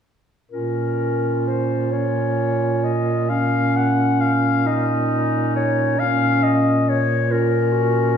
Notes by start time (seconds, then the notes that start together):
0.51 A#2 C#4 F4 A#4
1.48 C5
1.91 C#4 C#5
2.84 D#5
3.29 C#4 F5
3.76 F#5
4.20 F5
4.66 D#4 D#5
5.56 C#5
5.98 A#2 C#4 F5
6.43 D#5
6.89 C#5
7.30 C#4 F4 A#4
7.72 F#4
8.14 F4